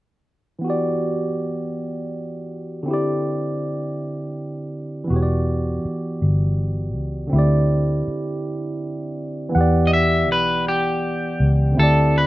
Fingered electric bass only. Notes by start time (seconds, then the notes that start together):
5.10 E1
5.85 muted fingered electric bass stroke
6.22 G1
6.96 C#2
7.33 D2
8.08 muted fingered electric bass stroke
9.55 E2
10.29 B1
11.40 C#2
11.78 D2